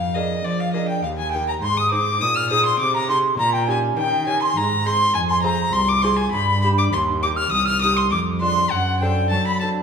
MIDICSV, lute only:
0, 0, Header, 1, 2, 480
1, 0, Start_track
1, 0, Key_signature, -3, "major"
1, 0, Tempo, 588813
1, 1330, Time_signature, 3, 2, 24, 8
1, 4201, Key_signature, -3, "minor"
1, 4679, Tempo, 596421
1, 7968, End_track
2, 0, Start_track
2, 0, Title_t, "Lute"
2, 0, Program_c, 0, 24
2, 0, Note_on_c, 0, 41, 44
2, 128, Note_on_c, 0, 58, 35
2, 130, Note_on_c, 0, 62, 36
2, 133, Note_on_c, 0, 68, 41
2, 335, Note_off_c, 0, 41, 0
2, 367, Note_on_c, 0, 53, 43
2, 577, Note_off_c, 0, 58, 0
2, 578, Note_off_c, 0, 62, 0
2, 580, Note_off_c, 0, 68, 0
2, 602, Note_on_c, 0, 58, 34
2, 607, Note_on_c, 0, 62, 33
2, 612, Note_on_c, 0, 68, 38
2, 816, Note_off_c, 0, 53, 0
2, 821, Note_off_c, 0, 58, 0
2, 825, Note_off_c, 0, 62, 0
2, 825, Note_off_c, 0, 68, 0
2, 845, Note_on_c, 0, 39, 46
2, 1097, Note_on_c, 0, 58, 33
2, 1099, Note_on_c, 0, 63, 31
2, 1104, Note_on_c, 0, 67, 39
2, 1295, Note_off_c, 0, 39, 0
2, 1310, Note_off_c, 0, 58, 0
2, 1310, Note_off_c, 0, 63, 0
2, 1314, Note_off_c, 0, 67, 0
2, 1323, Note_on_c, 0, 44, 50
2, 1559, Note_on_c, 0, 60, 38
2, 1568, Note_on_c, 0, 63, 37
2, 1570, Note_on_c, 0, 68, 45
2, 1773, Note_off_c, 0, 44, 0
2, 1799, Note_on_c, 0, 46, 48
2, 2011, Note_off_c, 0, 60, 0
2, 2015, Note_off_c, 0, 63, 0
2, 2015, Note_off_c, 0, 68, 0
2, 2041, Note_on_c, 0, 60, 39
2, 2046, Note_on_c, 0, 63, 39
2, 2047, Note_on_c, 0, 68, 43
2, 2250, Note_off_c, 0, 46, 0
2, 2280, Note_on_c, 0, 48, 50
2, 2491, Note_off_c, 0, 60, 0
2, 2492, Note_off_c, 0, 63, 0
2, 2494, Note_off_c, 0, 68, 0
2, 2515, Note_on_c, 0, 60, 37
2, 2517, Note_on_c, 0, 63, 37
2, 2523, Note_on_c, 0, 68, 36
2, 2731, Note_off_c, 0, 48, 0
2, 2736, Note_off_c, 0, 60, 0
2, 2738, Note_off_c, 0, 63, 0
2, 2740, Note_off_c, 0, 68, 0
2, 2750, Note_on_c, 0, 46, 56
2, 2994, Note_on_c, 0, 61, 44
2, 3001, Note_on_c, 0, 63, 41
2, 3004, Note_on_c, 0, 67, 45
2, 3206, Note_off_c, 0, 46, 0
2, 3234, Note_on_c, 0, 51, 53
2, 3448, Note_off_c, 0, 61, 0
2, 3452, Note_off_c, 0, 63, 0
2, 3453, Note_off_c, 0, 67, 0
2, 3475, Note_on_c, 0, 61, 36
2, 3481, Note_on_c, 0, 63, 40
2, 3481, Note_on_c, 0, 67, 44
2, 3686, Note_off_c, 0, 51, 0
2, 3695, Note_off_c, 0, 61, 0
2, 3697, Note_off_c, 0, 67, 0
2, 3698, Note_off_c, 0, 63, 0
2, 3721, Note_on_c, 0, 44, 55
2, 3954, Note_on_c, 0, 60, 35
2, 3957, Note_on_c, 0, 63, 38
2, 3962, Note_on_c, 0, 68, 41
2, 4166, Note_off_c, 0, 44, 0
2, 4172, Note_off_c, 0, 60, 0
2, 4174, Note_off_c, 0, 63, 0
2, 4175, Note_off_c, 0, 68, 0
2, 4191, Note_on_c, 0, 41, 57
2, 4432, Note_on_c, 0, 60, 45
2, 4433, Note_on_c, 0, 65, 44
2, 4435, Note_on_c, 0, 68, 49
2, 4643, Note_off_c, 0, 41, 0
2, 4881, Note_off_c, 0, 65, 0
2, 4882, Note_off_c, 0, 60, 0
2, 4883, Note_off_c, 0, 68, 0
2, 4915, Note_on_c, 0, 60, 39
2, 4919, Note_on_c, 0, 65, 40
2, 4923, Note_on_c, 0, 68, 46
2, 5132, Note_off_c, 0, 60, 0
2, 5134, Note_off_c, 0, 65, 0
2, 5137, Note_off_c, 0, 68, 0
2, 5154, Note_on_c, 0, 43, 57
2, 5404, Note_on_c, 0, 67, 40
2, 5406, Note_on_c, 0, 62, 38
2, 5604, Note_off_c, 0, 43, 0
2, 5617, Note_off_c, 0, 67, 0
2, 5618, Note_off_c, 0, 62, 0
2, 5632, Note_on_c, 0, 39, 58
2, 5888, Note_on_c, 0, 63, 42
2, 5889, Note_on_c, 0, 67, 45
2, 6081, Note_off_c, 0, 39, 0
2, 6330, Note_off_c, 0, 67, 0
2, 6331, Note_off_c, 0, 63, 0
2, 6364, Note_on_c, 0, 63, 38
2, 6369, Note_on_c, 0, 67, 43
2, 6577, Note_off_c, 0, 63, 0
2, 6579, Note_off_c, 0, 67, 0
2, 6592, Note_on_c, 0, 41, 50
2, 6828, Note_on_c, 0, 56, 35
2, 6832, Note_on_c, 0, 62, 37
2, 6834, Note_on_c, 0, 65, 40
2, 7043, Note_off_c, 0, 41, 0
2, 7049, Note_off_c, 0, 56, 0
2, 7050, Note_off_c, 0, 62, 0
2, 7051, Note_off_c, 0, 65, 0
2, 7079, Note_on_c, 0, 42, 51
2, 7315, Note_on_c, 0, 60, 38
2, 7321, Note_on_c, 0, 62, 41
2, 7325, Note_on_c, 0, 69, 46
2, 7528, Note_off_c, 0, 42, 0
2, 7563, Note_on_c, 0, 54, 47
2, 7766, Note_off_c, 0, 60, 0
2, 7769, Note_off_c, 0, 62, 0
2, 7770, Note_off_c, 0, 69, 0
2, 7801, Note_on_c, 0, 60, 34
2, 7806, Note_on_c, 0, 62, 35
2, 7812, Note_on_c, 0, 69, 40
2, 7968, Note_off_c, 0, 54, 0
2, 7968, Note_off_c, 0, 60, 0
2, 7968, Note_off_c, 0, 62, 0
2, 7968, Note_off_c, 0, 69, 0
2, 7968, End_track
0, 0, End_of_file